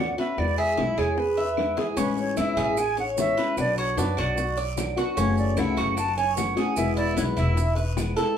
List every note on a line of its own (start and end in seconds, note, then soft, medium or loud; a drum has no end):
0.00 0.14 D2 medium
0.00 0.17 D3 soft
0.00 0.18 B3 soft
0.00 0.17 C#4 soft
0.00 0.16 F#4 soft
0.00 0.17 D5 medium
0.00 0.18 F#5 medium
0.17 0.38 B3 soft
0.17 0.38 C#4 medium
0.17 0.37 F#4 medium
0.17 0.57 B4 medium
0.17 0.40 E5 medium
0.17 high bongo soft
0.17 short guiro medium
0.37 0.76 E2 medium
0.37 0.76 B2 medium
0.37 0.77 E3 medium
0.37 0.78 G#3 medium
0.37 0.78 B3 medium
0.37 0.78 E4 medium
0.37 0.57 D5 medium
0.37 high bongo medium
0.37 long guiro medium
0.37 claves medium
0.58 0.77 G#4 medium
0.58 1.00 E5 medium
0.77 0.97 B1 medium
0.77 1.16 B2 medium
0.77 1.16 E3 medium
0.77 1.16 G#3 medium
0.77 1.17 B3 medium
0.77 0.97 E4 medium
0.77 1.17 E4 medium
0.77 high bongo soft
0.77 short guiro medium
0.98 1.74 E2 medium
0.98 1.37 G#4 medium
0.98 1.20 C#5 medium
0.98 high bongo soft
0.98 short guiro medium
0.98 claves medium
1.17 1.78 B4 medium
1.17 muted nylon-string guitar stroke soft
1.17 high bongo medium
1.17 long guiro medium
1.37 1.76 E5 medium
1.37 high bongo soft
1.57 1.77 E3 soft
1.57 1.77 G#3 soft
1.57 1.77 B3 soft
1.57 1.76 E4 soft
1.57 high bongo medium
1.57 short guiro medium
1.57 claves medium
1.77 1.95 E3 soft
1.77 1.96 G#3 medium
1.77 1.97 B3 soft
1.77 1.97 E4 medium
1.77 1.97 G#4 medium
1.77 low bongo medium
1.77 short guiro medium
1.96 2.35 A1 medium
1.96 2.35 E3 medium
1.96 2.36 G#3 medium
1.96 2.36 C#4 medium
1.96 2.37 C#4 medium
1.96 2.37 E4 medium
1.96 2.17 B4 medium
1.96 high bongo medium
1.96 long guiro medium
1.96 maracas medium
2.17 2.38 C#5 medium
2.17 high bongo soft
2.17 maracas soft
2.36 2.56 E2 medium
2.36 2.76 E3 medium
2.36 2.76 G#3 medium
2.36 2.77 C#4 medium
2.36 2.57 E4 medium
2.36 2.77 E4 medium
2.36 2.80 E5 medium
2.36 high bongo medium
2.36 short guiro medium
2.36 claves medium
2.36 maracas medium
2.57 3.33 A1 medium
2.57 2.96 G#4 medium
2.57 short guiro medium
2.57 maracas soft
2.77 2.98 G#5 loud
2.77 muted nylon-string guitar stroke medium
2.77 high bongo medium
2.77 long guiro medium
2.77 claves medium
2.77 maracas medium
2.97 3.36 C#5 medium
2.97 3.05 F#5 loud
2.97 high bongo soft
2.97 maracas soft
3.16 3.36 E3 soft
3.16 3.37 G#3 soft
3.16 3.37 C#4 soft
3.16 3.35 E4 medium
3.16 3.56 E5 medium
3.16 high bongo medium
3.16 low bongo medium
3.16 short guiro medium
3.16 maracas medium
3.37 3.57 G#3 soft
3.37 3.57 C#4 medium
3.37 3.56 E4 medium
3.37 3.76 B4 medium
3.37 high bongo soft
3.37 short guiro medium
3.37 maracas soft
3.56 3.95 B1 medium
3.56 3.95 B2 medium
3.56 3.96 F#3 medium
3.56 3.97 B3 medium
3.56 3.97 D4 medium
3.56 3.97 F#4 medium
3.56 3.77 D5 medium
3.56 high bongo medium
3.56 long guiro medium
3.56 claves medium
3.56 maracas medium
3.78 3.97 F#4 medium
3.78 3.99 C#5 medium
3.78 maracas soft
3.96 4.16 F#2 medium
3.96 4.36 B2 medium
3.96 4.37 F#3 medium
3.96 4.37 B3 medium
3.96 4.17 D4 medium
3.96 4.37 D4 medium
3.96 4.37 F#4 medium
3.96 4.20 B4 medium
3.96 high bongo medium
3.96 short guiro medium
3.96 maracas medium
4.17 4.93 B1 medium
4.17 4.57 F#4 medium
4.17 4.58 D5 medium
4.17 high bongo soft
4.17 short guiro medium
4.17 claves medium
4.17 maracas soft
4.37 muted nylon-string guitar stroke medium
4.37 high bongo medium
4.37 long guiro medium
4.37 maracas medium
4.57 4.96 D5 medium
4.57 high bongo soft
4.57 maracas soft
4.76 4.96 F#3 soft
4.76 4.97 B3 soft
4.76 4.96 D4 soft
4.76 4.95 F#4 medium
4.76 high bongo medium
4.76 low bongo medium
4.76 short guiro medium
4.76 claves medium
4.76 maracas medium
4.96 5.17 F#3 medium
4.96 5.17 B3 medium
4.96 5.17 D4 medium
4.96 5.16 F#4 medium
4.96 5.17 F#4 medium
4.96 high bongo soft
4.96 short guiro medium
4.96 maracas soft
5.16 5.55 F#1 medium
5.16 5.55 C#3 medium
5.16 5.56 E3 medium
5.16 5.56 A3 medium
5.16 5.56 C#4 medium
5.16 5.57 C#4 medium
5.16 5.57 F#4 medium
5.16 5.36 C#5 medium
5.16 high bongo medium
5.16 long guiro medium
5.16 maracas medium
5.38 5.60 D5 medium
5.38 high bongo soft
5.38 maracas soft
5.56 5.77 C#2 medium
5.56 5.96 C#3 medium
5.56 5.96 E3 medium
5.56 5.97 A3 medium
5.56 5.96 C#4 medium
5.56 5.77 E4 medium
5.56 5.97 F#4 medium
5.56 5.97 F#5 medium
5.56 high bongo soft
5.56 short guiro medium
5.56 claves medium
5.56 maracas medium
5.77 6.53 F#1 medium
5.77 6.16 F#4 medium
5.77 short guiro medium
5.77 maracas soft
5.97 6.16 A5 loud
5.97 muted nylon-string guitar stroke medium
5.97 high bongo medium
5.97 long guiro medium
5.97 claves medium
5.97 maracas medium
6.17 6.56 C#5 medium
6.17 6.36 G#5 loud
6.17 high bongo soft
6.17 maracas soft
6.36 6.56 E3 medium
6.36 6.56 A3 soft
6.36 6.55 C#4 soft
6.36 6.54 F#4 medium
6.36 6.74 F#5 medium
6.36 high bongo medium
6.36 low bongo medium
6.36 short guiro medium
6.36 maracas medium
6.56 6.76 E3 medium
6.56 6.77 A3 medium
6.56 6.76 C#4 medium
6.56 6.76 F#4 medium
6.56 6.96 G#4 medium
6.56 high bongo soft
6.56 short guiro medium
6.56 maracas soft
6.76 7.15 E1 medium
6.76 7.15 B2 medium
6.76 7.16 E3 medium
6.76 7.16 G#3 medium
6.76 7.17 B3 medium
6.76 7.17 E4 medium
6.76 6.95 E5 medium
6.76 high bongo medium
6.76 long guiro medium
6.76 claves medium
6.76 maracas medium
6.97 7.17 E4 medium
6.97 7.16 D5 medium
6.97 maracas soft
7.16 7.36 B1 medium
7.16 7.55 B2 medium
7.16 7.55 E3 medium
7.16 7.56 G#3 medium
7.16 7.36 B3 medium
7.16 7.56 B3 medium
7.16 7.56 E4 medium
7.16 7.23 C#5 medium
7.16 high bongo medium
7.16 short guiro medium
7.16 maracas medium
7.36 8.13 E1 medium
7.36 7.76 E4 medium
7.36 7.74 E5 medium
7.36 high bongo soft
7.36 short guiro medium
7.36 claves medium
7.36 maracas soft
7.56 muted nylon-string guitar stroke medium
7.56 high bongo medium
7.56 long guiro medium
7.56 maracas medium
7.76 8.15 B4 medium
7.76 high bongo soft
7.76 maracas soft
7.97 8.16 E3 soft
7.97 8.16 G#3 soft
7.97 8.16 B3 medium
7.97 8.16 E4 soft
7.97 high bongo medium
7.97 low bongo medium
7.97 short guiro medium
7.97 claves medium
7.97 maracas medium
8.17 8.35 E3 soft
8.17 8.37 G#3 medium
8.17 8.37 B3 medium
8.17 8.36 E4 medium
8.17 8.36 A4 medium
8.17 high bongo soft
8.17 short guiro medium
8.17 maracas soft